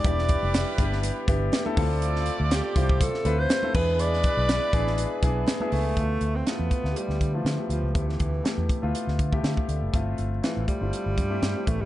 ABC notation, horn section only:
X:1
M:4/4
L:1/8
Q:"Swing 16ths" 1/4=121
K:Ddor
V:1 name="Horn section"
[G,EB]6 z [A,Fd]- | [A,Fd]6 z [^G,EB]- | [^G,EB]6- [G,EB] z | z8 |
z8 | z8 |]